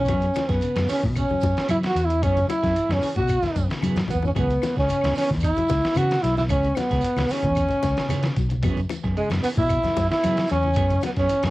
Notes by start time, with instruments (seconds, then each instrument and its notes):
Already playing: fingered electric bass B1, tenor saxophone C#4
0.00 trombone C#4
0.05 fingered electric bass F#2, clean electric guitar E3 F#3 B3 C#4 G#4, kick, closed hi-hat, shekere
0.10 low conga, claves
0.21 closed hi-hat, shekere
0.34 clean electric guitar E3, muted clean electric guitar stroke, snare, closed hi-hat, high conga, claves, shekere
0.48 fingered electric bass F#2, trombone B3, clean electric guitar B3 C#4 G#4, tenor saxophone B3, kick, snare, closed hi-hat, shekere
0.61 clean electric guitar C#3, closed hi-hat, shekere
0.76 fingered electric bass F#2, clean electric guitar B3 C#4 G#4, snare, closed hi-hat, high conga, claves, shekere
0.89 clean electric guitar E3 B3 C#4 G#4, tenor saxophone C#4, trombone C#4, muted fingered electric bass stroke, snare, open hi-hat, shekere
1.02 fingered electric bass B2, clean electric guitar E3, muted clean electric guitar stroke, kick, low conga, shekere
1.16 trombone C#4, tenor saxophone C#4, kick, closed hi-hat, claves, shekere
1.28 clean electric guitar F#3, muted clean electric guitar stroke, high conga, low conga, shekere
1.41 fingered electric bass F#2, muted clean electric guitar stroke, kick, closed hi-hat, high conga, shekere
1.55 muted clean electric guitar stroke, snare, closed hi-hat, shekere
1.68 clean electric guitar E3 B3 C#4 G#4, fingered electric bass F#3, tenor saxophone E4, trombone E4, closed hi-hat, high conga, claves, shekere
1.83 tenor saxophone F#4, trombone F#4, snare, closed hi-hat, shekere
1.95 fingered electric bass E2, muted clean electric guitar stroke, closed hi-hat, shekere
2.05 clean electric guitar E3, tenor saxophone E4, trombone E4, muted clean electric guitar stroke
2.10 closed hi-hat, shekere
2.22 fingered electric bass F#2, clean electric guitar E3 B3 C#4 G#4, tenor saxophone C#4, trombone C#4, kick, closed hi-hat, low conga, claves, shekere
2.37 closed hi-hat, high conga, shekere
2.48 clean electric guitar F#3, trombone E4, tenor saxophone E4, muted clean electric guitar stroke, closed hi-hat, high conga, claves, shekere
2.62 fingered electric bass F#2, clean electric guitar B3 C#4 G#4, kick, snare, closed hi-hat, shekere
2.74 clean electric guitar E3, muted clean electric guitar stroke, closed hi-hat, shekere
2.89 fingered electric bass F#2, clean electric guitar B3 C#4 G#4, trombone C#4, snare, high conga, claves, shekere
2.94 tenor saxophone C#4
3.01 clean electric guitar E3 G#4, muted fingered electric bass stroke, open hi-hat, shekere
3.15 fingered electric bass B2, clean electric guitar C#3, trombone F#4, tenor saxophone F#4, muted clean electric guitar stroke, kick, closed hi-hat, low conga, shekere
3.28 kick, closed hi-hat, claves, shekere
3.42 muted clean electric guitar stroke, snare, closed hi-hat, high conga, low conga, shekere
3.55 fingered electric bass F#2, muted clean electric guitar stroke, kick, closed hi-hat, high conga, shekere
3.68 clean electric guitar C#3, muted clean electric guitar stroke, snare, closed hi-hat, shekere
3.81 clean electric guitar C#3 E3 B3 G#4, fingered electric bass F#3, muted clean electric guitar stroke, closed hi-hat, high conga, claves, shekere
3.95 clean electric guitar E3, snare, closed hi-hat, low conga, shekere
4.08 fingered electric bass E2, clean electric guitar F#3, tenor saxophone B3, muted clean electric guitar stroke, kick, closed hi-hat, low conga, shekere
4.13 trombone B3
4.22 clean electric guitar E3, trombone C#4, muted clean electric guitar stroke, low conga, shekere
4.27 tenor saxophone C#4
4.35 fingered electric bass C#2, clean electric guitar E3 F#3 B3 C#4 G#4, trombone B3, tenor saxophone B3, kick, closed hi-hat, low conga, claves, shekere
4.50 closed hi-hat, high conga, shekere
4.62 clean electric guitar E3, muted clean electric guitar stroke, snare, closed hi-hat, high conga, claves, shekere
4.76 fingered electric bass C#2, clean electric guitar C#4 G#4, trombone C#4, tenor saxophone C#4, muted clean electric guitar stroke, kick, snare, shekere
4.89 clean electric guitar C#3, muted clean electric guitar stroke, closed hi-hat, shekere
5.01 fingered electric bass C#2, clean electric guitar B3 C#4 G#4, snare, closed hi-hat, high conga, claves, shekere
5.15 clean electric guitar E3 B3 C#4, trombone C#4, tenor saxophone C#4, muted fingered electric bass stroke, snare, open hi-hat, shekere
5.28 fingered electric bass E2, clean electric guitar E3, muted clean electric guitar stroke, kick, snare, shekere
5.40 trombone E4, kick, claves, shekere
5.44 tenor saxophone E4, closed hi-hat
5.54 clean electric guitar F#3, muted clean electric guitar stroke, closed hi-hat, high conga, low conga, shekere
5.68 fingered electric bass C#2, muted clean electric guitar stroke, kick, snare, closed hi-hat, high conga, shekere
5.81 muted clean electric guitar stroke, snare, shekere
5.94 fingered electric bass C#3, clean electric guitar E3 B3 C#4 G#4, trombone F#4, tenor saxophone F#4, closed hi-hat, high conga, claves, shekere
6.08 snare, closed hi-hat, shekere
6.22 fingered electric bass B1, clean electric guitar F#3, trombone E4, tenor saxophone E4, muted clean electric guitar stroke, snare, closed hi-hat, shekere
6.36 clean electric guitar E3, trombone E4, tenor saxophone E4, muted clean electric guitar stroke, snare, high conga, shekere
6.49 fingered electric bass C#2, clean electric guitar E3 B3 C#4 G#4, trombone C#4, tenor saxophone C#4, kick, closed hi-hat, low conga, claves, shekere
6.62 closed hi-hat, shekere
6.75 clean electric guitar F#3, tenor saxophone B3, trombone B3, muted clean electric guitar stroke, snare, closed hi-hat, high conga, claves, shekere
6.89 fingered electric bass C#2, clean electric guitar B3 C#4 G#4, kick, snare, closed hi-hat, shekere
7.01 muted clean electric guitar stroke, closed hi-hat, shekere
7.16 fingered electric bass C#2, clean electric guitar B3 C#4 G#4, snare, closed hi-hat, high conga, claves, shekere
7.29 clean electric guitar E3 B3 C#4 G#4, tenor saxophone C#4, trombone C#4, snare, open hi-hat, shekere
7.42 fingered electric bass E2, clean electric guitar E3, muted clean electric guitar stroke, kick, closed hi-hat, low conga, shekere
7.55 kick, closed hi-hat, claves, shekere
7.69 muted clean electric guitar stroke, closed hi-hat, high conga, low conga, shekere
7.83 fingered electric bass C#2, muted clean electric guitar stroke, kick, snare, closed hi-hat, high conga, shekere
7.97 clean electric guitar C#3, muted clean electric guitar stroke, snare, closed hi-hat, shekere
8.09 fingered electric bass C#3, clean electric guitar C#3 E3 B3 C#4 G#4, snare, closed hi-hat, high conga, claves, shekere
8.23 clean electric guitar E3, snare, closed hi-hat, shekere
8.36 fingered electric bass B1, clean electric guitar F#3, muted clean electric guitar stroke, kick, closed hi-hat, shekere
8.49 muted clean electric guitar stroke, closed hi-hat, high conga, shekere
8.62 fingered electric bass F#2, clean electric guitar E3 F#3 B3 C#4 G#4, kick, closed hi-hat, low conga, claves, shekere
8.77 closed hi-hat, high conga, shekere
8.90 clean electric guitar E3, muted clean electric guitar stroke, closed hi-hat, high conga, claves, shekere
9.04 fingered electric bass F#2, clean electric guitar B3 C#4 G#4, kick, snare, shekere
9.17 clean electric guitar C#3, tenor saxophone G#3, trombone G#3, muted clean electric guitar stroke, closed hi-hat, shekere
9.29 fingered electric bass F#2, clean electric guitar B3 C#4 G#4, snare, closed hi-hat, high conga, claves, shekere
9.43 clean electric guitar E3 B3 C#4 G#4, trombone B3, tenor saxophone B3, muted fingered electric bass stroke, open hi-hat, shekere
9.57 fingered electric bass B2, clean electric guitar E3, trombone E4, tenor saxophone E4, kick, low conga, shekere
9.69 kick, closed hi-hat, claves, shekere
9.84 clean electric guitar F#3, muted clean electric guitar stroke, snare, closed hi-hat, high conga, low conga, shekere
9.97 fingered electric bass F#2, muted clean electric guitar stroke, kick, snare, closed hi-hat, high conga, shekere
10.10 trombone E4, tenor saxophone E4, muted clean electric guitar stroke, snare, shekere
10.23 clean electric guitar E3 B3 C#4 G#4, fingered electric bass F#3, snare, closed hi-hat, high conga, claves, shekere
10.36 snare, closed hi-hat, shekere
10.48 fingered electric bass E2, clean electric guitar F#3, trombone C#4, muted clean electric guitar stroke, closed hi-hat, shekere
10.52 tenor saxophone C#4
10.62 clean electric guitar E3, muted clean electric guitar stroke, high conga, shekere
10.74 fingered electric bass F#2, clean electric guitar E3 B3 C#4 G#4, kick, closed hi-hat, low conga, claves, shekere
10.89 closed hi-hat, high conga, shekere
11.01 clean electric guitar F#3, trombone B3, muted clean electric guitar stroke, snare, closed hi-hat, high conga, claves, shekere
11.06 tenor saxophone B3
11.16 fingered electric bass F#2, clean electric guitar B3 G#4, trombone C#4, tenor saxophone C#4, kick, snare, closed hi-hat, shekere
11.28 clean electric guitar E3, muted clean electric guitar stroke, closed hi-hat, shekere
11.42 fingered electric bass F#2, clean electric guitar C#4 G#4, trombone C#4, muted clean electric guitar stroke, snare, closed hi-hat, high conga, claves, shekere
11.46 tenor saxophone C#4